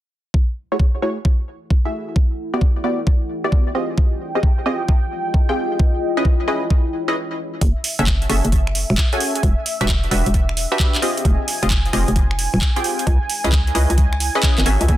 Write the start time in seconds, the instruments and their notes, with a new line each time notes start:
0.34 ambient pad E4, kick
0.72 synth stab A3 E4 F#4 G#4 C#5
0.80 kick
0.99 synth stab A3 E4 F#4 G#4 C#5, ambient pad A4
1.19 ambient pad F#5
1.25 kick
1.70 kick
1.85 synth stab A3 E4 F#4 G#4 E5
2.16 kick
2.32 ambient pad G4
2.54 synth stab B3 E4 F#4 G4 D5
2.61 kick
2.84 synth stab B3 E4 F#4 G4 D5
3.07 kick
3.44 synth stab B3 E4 F#4 G4 D5
3.52 kick
3.75 synth stab C4 F4 G4 G#4 D#5
3.98 ambient pad F4, analog synth pad G5, kick
4.34 synth stab C4 F4 G4 G#4 D#5, ambient pad D#5
4.43 kick
4.61 ambient pad G#4
4.66 synth stab C4 F4 G4 G#4 D#5
4.88 kick
5.34 kick
5.49 synth stab C4 F4 G4 G#4 G5
5.79 ambient pad E4, kick
6.17 synth stab C#4 E4 G#4 B4 D#5
6.25 kick
6.48 synth stab C#4 E4 G#4 B4 D#5
6.70 kick
7.08 synth stab C#4 E4 G#4 B4 D#5
7.61 fm bass F#1, analog synth pad E5, kick, closed hi-hat
7.84 open hi-hat
7.97 fm bass F#1, synth stab C#4 F#4 G#4 A4 E5, ambient pad A4 G#5, closed hi-hat
8.07 kick, clap
8.22 closed hi-hat
8.29 fm bass F#1, synth stab C#4 F#4 G#4 A4 E5, open hi-hat
8.45 fm bass F#1, closed hi-hat
8.52 kick, closed hi-hat
8.67 finger snap
8.75 open hi-hat
8.90 fm bass E1, finger snap
8.98 kick, clap
9.13 synth stab C#4 F#4 G#4 A4 G#5, closed hi-hat
9.20 open hi-hat
9.35 closed hi-hat
9.43 fm bass E1, ambient pad D4, kick, closed hi-hat
9.63 ambient pad G4 F#5, open hi-hat
9.81 fm bass E1, synth stab D4 F#4 G4 B4 E5, closed hi-hat
9.89 kick, clap
10.04 closed hi-hat
10.11 fm bass E1, synth stab D4 F#4 G4 B4 E5, open hi-hat
10.26 fm bass E1, closed hi-hat
10.34 kick, closed hi-hat
10.49 finger snap
10.57 open hi-hat
10.72 synth stab D4 F#4 G4 B4 E5, finger snap
10.79 kick, clap
10.95 clap, closed hi-hat
11.02 synth stab C4 F4 G4 G#4 D#5, open hi-hat
11.17 closed hi-hat
11.25 fm bass F1, ambient pad D#4, analog synth pad G#5, kick, closed hi-hat
11.48 open hi-hat
11.63 fm bass F1, synth stab C4 F4 G4 G#4 D#5, closed hi-hat
11.70 kick, clap
11.86 closed hi-hat
11.90 fm bass F1, synth stab C4 F4 G4 G#4 D#5, ambient pad G#4, open hi-hat
12.08 fm bass F1, closed hi-hat
12.16 kick, closed hi-hat
12.31 finger snap
12.39 open hi-hat
12.54 fm bass D#1, finger snap
12.61 kick, clap
12.76 synth stab C4 F4 G4 G#4 G5, closed hi-hat
12.84 open hi-hat
12.99 closed hi-hat
13.06 fm bass C#2, ambient pad E4, kick, closed hi-hat
13.30 open hi-hat
13.44 fm bass C#2, synth stab C#4 E4 G#4 B4 D#5, closed hi-hat
13.52 ambient pad D#6, kick, clap
13.67 closed hi-hat
13.75 fm bass C#2, synth stab C#4 E4 G#4 B4 D#5, open hi-hat
13.90 fm bass C#2, ambient pad B5, closed hi-hat
13.98 kick, closed hi-hat
14.13 finger snap
14.20 open hi-hat
14.35 synth stab C#4 E4 G#4 B4 D#5, finger snap
14.43 kick, clap
14.58 fm bass G#1, clap, closed hi-hat
14.66 fm bass G#1, synth stab C#4 F#4 G#4 A4 E5, open hi-hat
14.81 fm bass C#2, closed hi-hat
14.88 fm bass F#1, kick, closed hi-hat